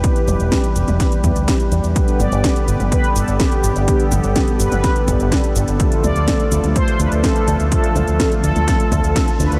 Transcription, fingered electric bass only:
\new Staff \with { instrumentName = "Fingered electric bass" } { \clef bass \time 4/4 \key g \mixolydian \tempo 4 = 125 r8 e,,16 e,,16 r8 e,,16 e,,16 r8 e,16 d,16 r8 e,16 e,16 | r8 g,,16 g,,16 r8 g,,16 g,,16 r8 g,,16 g,,16 r8 g,,16 g,,16 | r8 g,,16 g,,16 r8 g,,16 g,,16 r8 g,,16 g,,16 r8 g,,16 g,,16 | r8 d,16 d,16 r8 d,16 d,16 r8 d,16 d,16 r8 d,16 d,16 |
r8 d,16 d,16 r8 d,16 d,16 r8 d,16 d,16 r8 d,16 d,16 | }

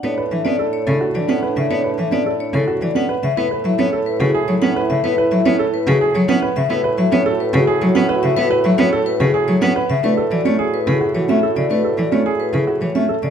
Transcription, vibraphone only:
\new Staff \with { instrumentName = "Vibraphone" } { \time 3/4 \key fis \minor \tempo 4 = 108 cis''16 r16 e''16 d''16 r16 cis''16 a'16 r16 d''16 fis''16 r16 e''16 | cis''16 r16 e''16 d''16 r16 cis''16 a'16 r16 d''16 fis''16 r16 e''16 | b'16 r16 e''16 cis''16 r16 b'16 gis'16 r16 cis''16 fis''16 r16 e''16 | b'16 r16 e''16 cis''16 r16 b'16 gis'16 r16 cis''16 fis''16 r16 e''16 |
b'16 r16 e''16 cis''16 r16 b'16 gis'16 r16 cis''16 fis''16 r16 e''16 | b'16 r16 e''16 cis''16 r16 b'16 gis'16 r16 cis''16 fis''16 r16 e''16 | b'16 r16 d''16 cis''16 r16 b'16 gis'16 r16 cis''16 e''16 r16 d''16 | b'16 r16 d''16 cis''16 r16 b'16 gis'16 r16 cis''16 e''16 r16 d''16 | }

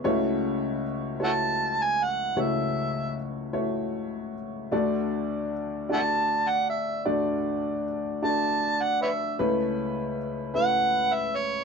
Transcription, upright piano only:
<<
  \new Staff \with { instrumentName = "Upright piano" } { \time 6/8 \key fis \minor \tempo 4. = 51 <a e' fis' cis''>4 r8 <a e' fis' cis''>4 r8 | <a e' fis' cis''>4 r8 <a e' fis' cis''>4 r8 | <a d' fis' d''>4 r8 <a d' fis' d''>4 r8 | <a d' fis' d''>4 r8 <a d' fis' d''>4 r8 |
<a cis' e' b'>4 r8 <a cis' e' b'>4 r8 | }
  \new Staff \with { instrumentName = "Upright piano" } { \clef bass \time 6/8 \key fis \minor <cis, cis>2. | <cis, cis>2. | <d, d>2. | <d, d>2. |
<cis, cis>2. | }
>>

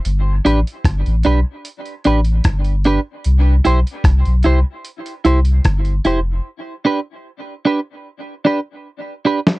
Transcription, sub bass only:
\new Staff \with { instrumentName = "Sub bass" } { \clef bass \time 4/4 \key g \mixolydian \tempo 4 = 75 g,,8 a,,16 r16 g,,16 a,,16 b,,16 r8. a,,8 g,,8. r16 | c,8 b,,16 r16 c,16 b,,16 c,16 r8. c,8 g,,8 f,,8 | r1 | }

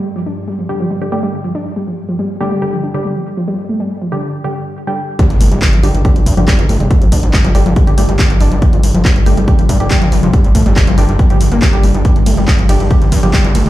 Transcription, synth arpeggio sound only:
\new Staff \with { instrumentName = "Synth arpeggio sound" } { \clef bass \time 4/4 \key c \dorian \tempo 4 = 140 r16 f16 d'16 r16 g16 f16 r16 f16 g16 r16 a16 g16 r16 f16 d'16 r16 | g16 f16 r16 f16 g16 r16 a16 g16 r16 f16 d'16 r16 g16 f16 r16 f16 | g16 r16 a16 g16 r16 f16 d'16 r2 r16 | g16 r16 a16 g16 r16 f16 d'16 r16 g16 f16 r16 f16 g16 r16 a16 g16 |
r16 f16 d'16 r16 g16 f16 r16 f16 g16 r16 a16 g16 r16 f16 d'16 r16 | g16 f16 r16 f16 g16 r16 a16 g16 r16 f16 d'16 r16 g16 f16 r16 f16 | g16 r16 a16 g16 r16 f16 d'16 r16 g16 f16 r16 bes16 g'16 r16 g16 d'16 | g16 r16 a16 g16 r16 f16 d'16 r16 g16 f16 r16 f16 g16 r16 a16 g16 | }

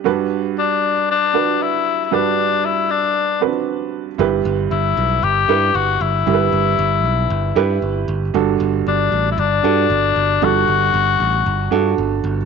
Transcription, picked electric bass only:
\new Staff \with { instrumentName = "Picked electric bass" } { \clef bass \time 4/4 \key e \minor \tempo 4 = 116 r1 | r1 | g,,8 g,,8 g,,8 b,,8 g,,8 g,8 g,,8 g,,8 | g,,8 g,,8 g,,8 b,,8 g,,8 g,8 g,,8 g,,8 |
g,,8 g,,8 g,,8 a,,8 g,,8 g,8 g,,8 g,,8 | g,,8 g,,8 g,,8 a,,8 g,,8 g,8 g,,8 g,,8 | }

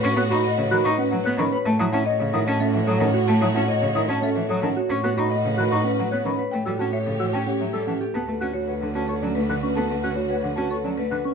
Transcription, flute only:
\new Staff \with { instrumentName = "Flute" } { \time 3/4 \key a \lydian \tempo 4 = 111 r16 fis'''16 cis'''16 dis''16 r16 fis'''16 cis'''16 fis''16 r16 fis'''16 cis'''16 b''16 | r16 dis'''16 a''16 dis''16 r16 dis'''16 a''16 e''16 r16 dis'''16 a''16 r16 | r16 dis'''16 a''16 dis''16 r16 dis'''16 a''16 e''16 r16 dis'''16 a''16 r16 | r16 fis'''16 cis'''16 dis''16 r16 fis'''16 cis'''16 fis''16 r16 fis'''16 cis'''16 r16 |
r16 e'''16 a''16 e''16 r16 e'''16 a''16 fis''16 r16 e'''16 a''16 r16 | \key d \major r8 fis'''16 r16 fis''16 r8 cis'''16 a''16 r16 fis'''16 cis'''16 | r8 fis'''16 r16 fis''16 r8 cis'''16 a''16 r16 fis'''16 cis'''16 | }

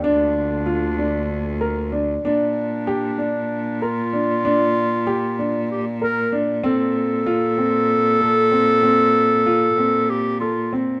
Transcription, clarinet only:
\new Staff \with { instrumentName = "Clarinet" } { \time 7/8 \key g \minor \tempo 4 = 95 d'2. r8 | d'2~ d'8 f'4~ | f'2 g'8 bes'8 r8 | a'2.~ a'8~ |
a'2 g'8 f'8 r8 | }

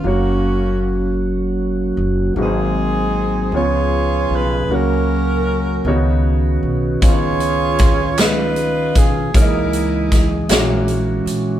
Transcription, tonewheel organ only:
<<
  \new Staff \with { instrumentName = "Tonewheel organ" } { \time 6/8 \key fis \major \tempo 4. = 52 << { fis'2. | gis'4. gis'4. | ais'4. fis'4. | eis'2. |
gis'4. fis'4. | } \\ { cis'2. | bis4. cis'4.~ | cis'2.~ | cis'2. |
dis''4. cis'4. | } >> }
  \new Staff \with { instrumentName = "Tonewheel organ" } { \clef bass \time 6/8 \key fis \major << { ais2.~ | ais4. b4. | ais4. b4.~ | b2. |
gis2. | } \\ { fis2. | fis4. eis4. | fis4. dis4.~ | dis2. |
e2. | } >> }
>>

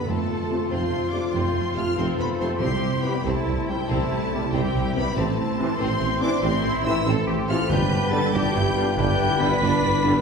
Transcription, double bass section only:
\new Staff \with { instrumentName = "Double bass section" } { \clef bass \time 12/8 \key c \major \tempo 4. = 94 f,8 r4 f,8 f,8 r8 f,8 f,8 f,8 f,8 f,8 f,8 | c,8 r4 c,8 c,8 r8 c,8 c,8 c,8 c,8 c,8 c,8 | a,,8 r4 a,,8 a,,8 r8 a,,8 a,,8 a,,8 a,,8 a,,8 a,,8 | g,,8 r4 g,,8 g,,8 r8 g,,8 g,,8 g,,8 g,,8 g,,8 g,,8 | }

